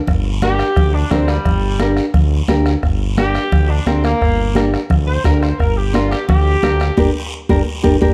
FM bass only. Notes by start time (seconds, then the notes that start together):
0.08 G1
0.77 D2
1.11 D2
1.46 G1
2.14 D2
2.48 D2
2.83 G1
3.52 D2
3.87 D2
4.22 G1
4.91 D2
5.25 D2
5.60 G1
6.29 D2
6.63 D2
6.98 G1
7.50 G1
7.85 G1
8.02 G1